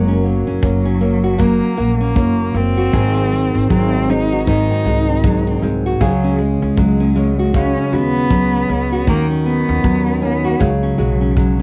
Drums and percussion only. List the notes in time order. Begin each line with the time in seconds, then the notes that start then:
0.63 kick
1.40 kick
2.16 kick
2.93 kick
3.70 kick
4.47 kick
5.24 kick
6.01 kick
6.78 kick
7.54 kick
8.31 kick
9.07 kick
9.84 kick
10.61 kick
11.37 kick